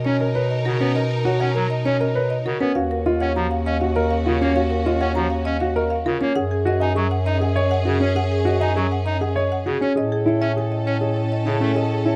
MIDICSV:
0, 0, Header, 1, 6, 480
1, 0, Start_track
1, 0, Tempo, 600000
1, 768, Time_signature, 3, 2, 24, 8
1, 9726, End_track
2, 0, Start_track
2, 0, Title_t, "Marimba"
2, 0, Program_c, 0, 12
2, 0, Note_on_c, 0, 75, 67
2, 37, Note_on_c, 0, 73, 80
2, 82, Note_off_c, 0, 75, 0
2, 161, Note_on_c, 0, 75, 59
2, 200, Note_off_c, 0, 73, 0
2, 281, Note_on_c, 0, 73, 66
2, 321, Note_off_c, 0, 75, 0
2, 404, Note_on_c, 0, 75, 71
2, 441, Note_off_c, 0, 73, 0
2, 523, Note_on_c, 0, 70, 64
2, 563, Note_off_c, 0, 75, 0
2, 646, Note_on_c, 0, 71, 70
2, 682, Note_off_c, 0, 70, 0
2, 764, Note_on_c, 0, 75, 83
2, 803, Note_off_c, 0, 71, 0
2, 887, Note_on_c, 0, 70, 67
2, 922, Note_off_c, 0, 75, 0
2, 1003, Note_on_c, 0, 73, 66
2, 1043, Note_off_c, 0, 70, 0
2, 1122, Note_on_c, 0, 78, 80
2, 1162, Note_off_c, 0, 73, 0
2, 1246, Note_on_c, 0, 82, 68
2, 1282, Note_off_c, 0, 78, 0
2, 1360, Note_on_c, 0, 75, 71
2, 1403, Note_off_c, 0, 82, 0
2, 1484, Note_on_c, 0, 73, 82
2, 1521, Note_off_c, 0, 75, 0
2, 1606, Note_on_c, 0, 75, 66
2, 1642, Note_off_c, 0, 73, 0
2, 1724, Note_on_c, 0, 73, 65
2, 1763, Note_off_c, 0, 75, 0
2, 1842, Note_on_c, 0, 75, 81
2, 1882, Note_off_c, 0, 73, 0
2, 1967, Note_on_c, 0, 70, 72
2, 2002, Note_off_c, 0, 75, 0
2, 2084, Note_on_c, 0, 71, 72
2, 2123, Note_off_c, 0, 70, 0
2, 2202, Note_on_c, 0, 77, 88
2, 2242, Note_off_c, 0, 71, 0
2, 2328, Note_on_c, 0, 70, 71
2, 2362, Note_off_c, 0, 77, 0
2, 2448, Note_on_c, 0, 75, 67
2, 2484, Note_off_c, 0, 70, 0
2, 2564, Note_on_c, 0, 78, 79
2, 2604, Note_off_c, 0, 75, 0
2, 2688, Note_on_c, 0, 82, 76
2, 2722, Note_off_c, 0, 78, 0
2, 2808, Note_on_c, 0, 77, 69
2, 2844, Note_off_c, 0, 82, 0
2, 2931, Note_on_c, 0, 75, 86
2, 2964, Note_off_c, 0, 77, 0
2, 3047, Note_on_c, 0, 77, 61
2, 3085, Note_off_c, 0, 75, 0
2, 3166, Note_on_c, 0, 75, 64
2, 3204, Note_off_c, 0, 77, 0
2, 3284, Note_on_c, 0, 77, 78
2, 3323, Note_off_c, 0, 75, 0
2, 3408, Note_on_c, 0, 70, 66
2, 3443, Note_off_c, 0, 77, 0
2, 3533, Note_on_c, 0, 73, 72
2, 3564, Note_off_c, 0, 70, 0
2, 3646, Note_on_c, 0, 77, 88
2, 3686, Note_off_c, 0, 73, 0
2, 3763, Note_on_c, 0, 70, 71
2, 3803, Note_off_c, 0, 77, 0
2, 3889, Note_on_c, 0, 75, 72
2, 3922, Note_off_c, 0, 70, 0
2, 4006, Note_on_c, 0, 78, 84
2, 4044, Note_off_c, 0, 75, 0
2, 4122, Note_on_c, 0, 82, 77
2, 4163, Note_off_c, 0, 78, 0
2, 4242, Note_on_c, 0, 77, 69
2, 4282, Note_off_c, 0, 82, 0
2, 4362, Note_on_c, 0, 75, 84
2, 4402, Note_off_c, 0, 77, 0
2, 4483, Note_on_c, 0, 77, 71
2, 4522, Note_off_c, 0, 75, 0
2, 4610, Note_on_c, 0, 75, 67
2, 4642, Note_off_c, 0, 77, 0
2, 4723, Note_on_c, 0, 77, 77
2, 4764, Note_off_c, 0, 75, 0
2, 4848, Note_on_c, 0, 70, 70
2, 4882, Note_off_c, 0, 77, 0
2, 4966, Note_on_c, 0, 73, 76
2, 5004, Note_off_c, 0, 70, 0
2, 5084, Note_on_c, 0, 78, 86
2, 5123, Note_off_c, 0, 73, 0
2, 5210, Note_on_c, 0, 68, 73
2, 5243, Note_off_c, 0, 78, 0
2, 5334, Note_on_c, 0, 75, 74
2, 5364, Note_off_c, 0, 68, 0
2, 5452, Note_on_c, 0, 80, 89
2, 5486, Note_off_c, 0, 75, 0
2, 5570, Note_on_c, 0, 85, 74
2, 5605, Note_off_c, 0, 80, 0
2, 5689, Note_on_c, 0, 78, 74
2, 5724, Note_off_c, 0, 85, 0
2, 5809, Note_on_c, 0, 75, 92
2, 5844, Note_off_c, 0, 78, 0
2, 5932, Note_on_c, 0, 78, 61
2, 5964, Note_off_c, 0, 75, 0
2, 6052, Note_on_c, 0, 75, 71
2, 6085, Note_off_c, 0, 78, 0
2, 6168, Note_on_c, 0, 78, 86
2, 6205, Note_off_c, 0, 75, 0
2, 6288, Note_on_c, 0, 68, 70
2, 6324, Note_off_c, 0, 78, 0
2, 6412, Note_on_c, 0, 73, 75
2, 6444, Note_off_c, 0, 68, 0
2, 6529, Note_on_c, 0, 78, 91
2, 6565, Note_off_c, 0, 73, 0
2, 6652, Note_on_c, 0, 68, 74
2, 6684, Note_off_c, 0, 78, 0
2, 6776, Note_on_c, 0, 75, 73
2, 6805, Note_off_c, 0, 68, 0
2, 6891, Note_on_c, 0, 80, 88
2, 6927, Note_off_c, 0, 75, 0
2, 7016, Note_on_c, 0, 85, 68
2, 7045, Note_off_c, 0, 80, 0
2, 7133, Note_on_c, 0, 78, 71
2, 7167, Note_off_c, 0, 85, 0
2, 7246, Note_on_c, 0, 75, 81
2, 7286, Note_off_c, 0, 78, 0
2, 7372, Note_on_c, 0, 78, 66
2, 7403, Note_off_c, 0, 75, 0
2, 7497, Note_on_c, 0, 75, 67
2, 7525, Note_off_c, 0, 78, 0
2, 7615, Note_on_c, 0, 78, 75
2, 7647, Note_off_c, 0, 75, 0
2, 7734, Note_on_c, 0, 68, 69
2, 7766, Note_off_c, 0, 78, 0
2, 7858, Note_on_c, 0, 73, 70
2, 7886, Note_off_c, 0, 68, 0
2, 7979, Note_on_c, 0, 75, 88
2, 8007, Note_off_c, 0, 73, 0
2, 8098, Note_on_c, 0, 68, 69
2, 8128, Note_off_c, 0, 75, 0
2, 8223, Note_on_c, 0, 73, 62
2, 8247, Note_off_c, 0, 68, 0
2, 8333, Note_on_c, 0, 76, 81
2, 8369, Note_off_c, 0, 73, 0
2, 8461, Note_on_c, 0, 80, 68
2, 8486, Note_off_c, 0, 76, 0
2, 8575, Note_on_c, 0, 75, 61
2, 8609, Note_off_c, 0, 80, 0
2, 8697, Note_on_c, 0, 73, 74
2, 8726, Note_off_c, 0, 75, 0
2, 8810, Note_on_c, 0, 75, 59
2, 8847, Note_off_c, 0, 73, 0
2, 8928, Note_on_c, 0, 73, 61
2, 8965, Note_off_c, 0, 75, 0
2, 9056, Note_on_c, 0, 75, 67
2, 9084, Note_off_c, 0, 73, 0
2, 9173, Note_on_c, 0, 68, 62
2, 9207, Note_off_c, 0, 75, 0
2, 9292, Note_on_c, 0, 69, 61
2, 9326, Note_off_c, 0, 68, 0
2, 9411, Note_on_c, 0, 75, 78
2, 9445, Note_off_c, 0, 69, 0
2, 9526, Note_on_c, 0, 68, 62
2, 9565, Note_off_c, 0, 75, 0
2, 9650, Note_on_c, 0, 73, 59
2, 9683, Note_off_c, 0, 68, 0
2, 9726, Note_off_c, 0, 73, 0
2, 9726, End_track
3, 0, Start_track
3, 0, Title_t, "Grand piano"
3, 0, Program_c, 1, 0
3, 45, Note_on_c, 1, 61, 69
3, 164, Note_on_c, 1, 70, 72
3, 203, Note_off_c, 1, 61, 0
3, 281, Note_on_c, 1, 71, 83
3, 323, Note_off_c, 1, 70, 0
3, 441, Note_off_c, 1, 71, 0
3, 523, Note_on_c, 1, 66, 62
3, 643, Note_on_c, 1, 61, 79
3, 682, Note_off_c, 1, 66, 0
3, 763, Note_on_c, 1, 70, 64
3, 802, Note_off_c, 1, 61, 0
3, 922, Note_off_c, 1, 70, 0
3, 1000, Note_on_c, 1, 66, 92
3, 1119, Note_on_c, 1, 73, 68
3, 1161, Note_off_c, 1, 66, 0
3, 1239, Note_on_c, 1, 70, 64
3, 1281, Note_off_c, 1, 73, 0
3, 1401, Note_off_c, 1, 70, 0
3, 1482, Note_on_c, 1, 61, 71
3, 1603, Note_on_c, 1, 70, 75
3, 1642, Note_off_c, 1, 61, 0
3, 1723, Note_on_c, 1, 71, 88
3, 1762, Note_off_c, 1, 70, 0
3, 1882, Note_off_c, 1, 71, 0
3, 1964, Note_on_c, 1, 66, 64
3, 2083, Note_on_c, 1, 61, 84
3, 2122, Note_off_c, 1, 66, 0
3, 2204, Note_on_c, 1, 66, 69
3, 2242, Note_off_c, 1, 61, 0
3, 2362, Note_off_c, 1, 66, 0
3, 2448, Note_on_c, 1, 65, 92
3, 2570, Note_on_c, 1, 73, 73
3, 2604, Note_off_c, 1, 65, 0
3, 2688, Note_on_c, 1, 66, 64
3, 2725, Note_off_c, 1, 73, 0
3, 2844, Note_off_c, 1, 66, 0
3, 3048, Note_on_c, 1, 66, 75
3, 3168, Note_on_c, 1, 70, 98
3, 3204, Note_off_c, 1, 66, 0
3, 3324, Note_off_c, 1, 70, 0
3, 3410, Note_on_c, 1, 65, 73
3, 3531, Note_on_c, 1, 61, 81
3, 3565, Note_off_c, 1, 65, 0
3, 3652, Note_on_c, 1, 66, 72
3, 3685, Note_off_c, 1, 61, 0
3, 3805, Note_off_c, 1, 66, 0
3, 3888, Note_on_c, 1, 65, 88
3, 4007, Note_on_c, 1, 73, 77
3, 4044, Note_off_c, 1, 65, 0
3, 4130, Note_on_c, 1, 66, 67
3, 4164, Note_off_c, 1, 73, 0
3, 4284, Note_off_c, 1, 66, 0
3, 4490, Note_on_c, 1, 66, 78
3, 4607, Note_on_c, 1, 70, 95
3, 4644, Note_off_c, 1, 66, 0
3, 4764, Note_off_c, 1, 70, 0
3, 4846, Note_on_c, 1, 65, 68
3, 4968, Note_on_c, 1, 61, 88
3, 5003, Note_off_c, 1, 65, 0
3, 5087, Note_on_c, 1, 68, 67
3, 5124, Note_off_c, 1, 61, 0
3, 5244, Note_off_c, 1, 68, 0
3, 5323, Note_on_c, 1, 66, 93
3, 5441, Note_on_c, 1, 75, 73
3, 5482, Note_off_c, 1, 66, 0
3, 5560, Note_on_c, 1, 68, 69
3, 5601, Note_off_c, 1, 75, 0
3, 5721, Note_off_c, 1, 68, 0
3, 5923, Note_on_c, 1, 68, 76
3, 6045, Note_on_c, 1, 73, 101
3, 6082, Note_off_c, 1, 68, 0
3, 6203, Note_off_c, 1, 73, 0
3, 6282, Note_on_c, 1, 66, 73
3, 6400, Note_on_c, 1, 61, 88
3, 6442, Note_off_c, 1, 66, 0
3, 6522, Note_on_c, 1, 68, 67
3, 6561, Note_off_c, 1, 61, 0
3, 6682, Note_off_c, 1, 68, 0
3, 6760, Note_on_c, 1, 66, 95
3, 6885, Note_on_c, 1, 75, 73
3, 6921, Note_off_c, 1, 66, 0
3, 7008, Note_on_c, 1, 68, 69
3, 7043, Note_off_c, 1, 75, 0
3, 7164, Note_off_c, 1, 68, 0
3, 7369, Note_on_c, 1, 68, 72
3, 7485, Note_on_c, 1, 73, 93
3, 7524, Note_off_c, 1, 68, 0
3, 7643, Note_off_c, 1, 73, 0
3, 7727, Note_on_c, 1, 66, 71
3, 7848, Note_on_c, 1, 61, 85
3, 7883, Note_off_c, 1, 66, 0
3, 7965, Note_on_c, 1, 68, 63
3, 8004, Note_off_c, 1, 61, 0
3, 8123, Note_off_c, 1, 68, 0
3, 8206, Note_on_c, 1, 64, 90
3, 8328, Note_on_c, 1, 73, 63
3, 8363, Note_off_c, 1, 64, 0
3, 8452, Note_on_c, 1, 68, 65
3, 8484, Note_off_c, 1, 73, 0
3, 8605, Note_off_c, 1, 68, 0
3, 8808, Note_on_c, 1, 68, 63
3, 8964, Note_off_c, 1, 68, 0
3, 9166, Note_on_c, 1, 64, 58
3, 9283, Note_on_c, 1, 61, 74
3, 9323, Note_off_c, 1, 64, 0
3, 9405, Note_on_c, 1, 68, 63
3, 9442, Note_off_c, 1, 61, 0
3, 9563, Note_off_c, 1, 68, 0
3, 9641, Note_on_c, 1, 64, 78
3, 9726, Note_off_c, 1, 64, 0
3, 9726, End_track
4, 0, Start_track
4, 0, Title_t, "Violin section"
4, 0, Program_c, 2, 48
4, 0, Note_on_c, 2, 63, 72
4, 0, Note_on_c, 2, 70, 71
4, 2051, Note_off_c, 2, 63, 0
4, 2051, Note_off_c, 2, 70, 0
4, 2220, Note_on_c, 2, 61, 72
4, 2223, Note_on_c, 2, 66, 68
4, 4942, Note_off_c, 2, 61, 0
4, 4943, Note_off_c, 2, 66, 0
4, 5084, Note_on_c, 2, 68, 77
4, 5088, Note_on_c, 2, 61, 74
4, 7814, Note_off_c, 2, 68, 0
4, 7816, Note_off_c, 2, 61, 0
4, 7977, Note_on_c, 2, 69, 67
4, 7980, Note_on_c, 2, 61, 71
4, 9726, Note_off_c, 2, 61, 0
4, 9726, Note_off_c, 2, 69, 0
4, 9726, End_track
5, 0, Start_track
5, 0, Title_t, "Pipe organ"
5, 0, Program_c, 3, 19
5, 40, Note_on_c, 3, 61, 77
5, 133, Note_off_c, 3, 61, 0
5, 528, Note_on_c, 3, 49, 67
5, 618, Note_off_c, 3, 49, 0
5, 644, Note_on_c, 3, 59, 64
5, 736, Note_off_c, 3, 59, 0
5, 1121, Note_on_c, 3, 61, 89
5, 1214, Note_off_c, 3, 61, 0
5, 1244, Note_on_c, 3, 54, 66
5, 1335, Note_off_c, 3, 54, 0
5, 1483, Note_on_c, 3, 61, 86
5, 1575, Note_off_c, 3, 61, 0
5, 1966, Note_on_c, 3, 49, 72
5, 2056, Note_off_c, 3, 49, 0
5, 2087, Note_on_c, 3, 59, 66
5, 2178, Note_off_c, 3, 59, 0
5, 2568, Note_on_c, 3, 61, 86
5, 2658, Note_off_c, 3, 61, 0
5, 2684, Note_on_c, 3, 53, 68
5, 2776, Note_off_c, 3, 53, 0
5, 2925, Note_on_c, 3, 61, 83
5, 3016, Note_off_c, 3, 61, 0
5, 3408, Note_on_c, 3, 49, 67
5, 3498, Note_off_c, 3, 49, 0
5, 3524, Note_on_c, 3, 58, 66
5, 3616, Note_off_c, 3, 58, 0
5, 4002, Note_on_c, 3, 61, 90
5, 4094, Note_off_c, 3, 61, 0
5, 4128, Note_on_c, 3, 53, 69
5, 4218, Note_off_c, 3, 53, 0
5, 4363, Note_on_c, 3, 61, 87
5, 4455, Note_off_c, 3, 61, 0
5, 4847, Note_on_c, 3, 49, 76
5, 4938, Note_off_c, 3, 49, 0
5, 4970, Note_on_c, 3, 58, 69
5, 5059, Note_off_c, 3, 58, 0
5, 5448, Note_on_c, 3, 63, 98
5, 5538, Note_off_c, 3, 63, 0
5, 5568, Note_on_c, 3, 54, 72
5, 5658, Note_off_c, 3, 54, 0
5, 5807, Note_on_c, 3, 63, 85
5, 5897, Note_off_c, 3, 63, 0
5, 6288, Note_on_c, 3, 49, 76
5, 6378, Note_off_c, 3, 49, 0
5, 6412, Note_on_c, 3, 61, 69
5, 6500, Note_off_c, 3, 61, 0
5, 6889, Note_on_c, 3, 63, 90
5, 6979, Note_off_c, 3, 63, 0
5, 7003, Note_on_c, 3, 54, 77
5, 7095, Note_off_c, 3, 54, 0
5, 7245, Note_on_c, 3, 63, 84
5, 7336, Note_off_c, 3, 63, 0
5, 7724, Note_on_c, 3, 49, 71
5, 7815, Note_off_c, 3, 49, 0
5, 7848, Note_on_c, 3, 61, 65
5, 7938, Note_off_c, 3, 61, 0
5, 8323, Note_on_c, 3, 61, 85
5, 8415, Note_off_c, 3, 61, 0
5, 8684, Note_on_c, 3, 61, 76
5, 8775, Note_off_c, 3, 61, 0
5, 9162, Note_on_c, 3, 49, 65
5, 9254, Note_off_c, 3, 49, 0
5, 9284, Note_on_c, 3, 57, 60
5, 9376, Note_off_c, 3, 57, 0
5, 9726, End_track
6, 0, Start_track
6, 0, Title_t, "Bass clarinet"
6, 0, Program_c, 4, 71
6, 0, Note_on_c, 4, 47, 70
6, 2077, Note_off_c, 4, 47, 0
6, 2205, Note_on_c, 4, 39, 78
6, 4958, Note_off_c, 4, 39, 0
6, 5090, Note_on_c, 4, 42, 78
6, 7841, Note_off_c, 4, 42, 0
6, 7965, Note_on_c, 4, 45, 73
6, 9726, Note_off_c, 4, 45, 0
6, 9726, End_track
0, 0, End_of_file